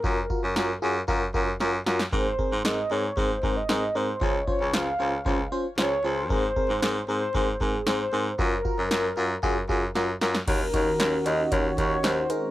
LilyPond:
<<
  \new Staff \with { instrumentName = "Soft synth lead" } { \time 4/4 \key aes \mixolydian \tempo 4 = 115 bes'4. r2 r8 | c''4 ees''8 des''8 c''8. ees''8. c''8 | des''8 des''8 f''4 r4 des''8 c''8 | c''4. c''4 aes'8 c''4 |
bes'2. r4 | bes'4. ees''16. ees''32 des''8 des''8 c''8 bes'8 | }
  \new Staff \with { instrumentName = "FM electric piano" } { \time 4/4 \key aes \mixolydian <f' ges' bes'>16 r16 <f' ges' bes'>16 r16 <f' ges' bes'>16 r16 <f' ges' aes'>16 r16 <f' ges' bes'>16 r16 <f' ges' bes'>16 r16 <f' ges' bes'>16 r16 <f' ges' bes'>16 r16 | <c' aes' bes'>16 r16 <c' aes' bes'>16 r16 <c' aes' bes'>16 r16 <c' aes' bes'>16 r16 <c' aes' bes'>16 r16 <c' aes' bes'>16 r16 <c' aes' bes'>16 r16 <c' aes' bes'>16 r16 | <des' f' c''>16 r16 <des' f' c''>16 r16 <des' f' c''>16 r16 <des' f' c''>16 r16 <des' f' c''>16 r16 <des' f' c''>16 r16 <des' f' c''>16 r16 <des' f' c''>16 r16 | <c' aes' bes'>16 r16 <c' aes' bes'>16 r16 <c' aes' bes'>16 r16 <c' aes' bes'>16 r16 <c' aes' bes'>16 r16 <c' aes' bes'>16 r16 <c' aes' c''>16 r16 <c' aes' bes'>16 r16 |
<f' ges' bes'>16 r16 <f' ges' bes'>16 r16 <f' ges' bes'>16 r16 <f' ges' bes'>16 r16 <f' ges' aes'>16 r16 <f' ges' aes'>16 r16 <f' ges' bes'>16 r16 <f' ges' bes'>16 r16 | <ees' ges' des''>16 r16 <ees' ges' des''>16 r16 <ees' ges' des''>16 r16 <ees' ges' des''>16 r16 <ees' ges' des''>16 r16 <ees' ges' des''>16 r16 <ees' ges' des''>16 r16 <ees' aes' c''>8 | }
  \new Staff \with { instrumentName = "Analog synth pad" } { \time 4/4 \key aes \mixolydian r1 | r1 | r1 | r1 |
r1 | <ees des' ges'>2.~ <ees des' ges'>8 <aes c' ees'>8 | }
  \new Staff \with { instrumentName = "Baritone saxophone" } { \clef bass \time 4/4 \key aes \mixolydian ges,8 r16 ges,16 ges,8 ges,8 ges,8 ges,8 ges,8 ges,8 | aes,8 r16 aes,16 aes,8 aes,8 aes,8 aes,8 aes,8 aes,8 | des,8 r16 des,16 des,8 des,8 des,8 r8 des,8 des,8 | aes,8 r16 aes,16 aes,8 aes,8 aes,8 aes,8 aes,8 aes,8 |
ges,8 r16 ges,16 ges,8 ges,8 ges,8 ges,8 ges,8 ges,8 | ees,8 ees,8 ees,8 ees,8 ees,8 ees,8 ees,8 r8 | }
  \new DrumStaff \with { instrumentName = "Drums" } \drummode { \time 4/4 bd8 bd8 sn4 bd8 bd8 sn8 sn16 sn16 | bd8 bd8 sn4 bd8 bd8 sn4 | bd8 bd8 sn4 bd4 sn4 | bd8 bd8 sn4 bd8 bd8 sn4 |
bd8 bd8 sn4 bd8 bd8 sn8 sn16 sn16 | <cymc hh bd>8 <hh bd>8 <hh sn>8 hh8 <hh bd>8 <hh bd>8 <hh sn>8 hh8 | }
>>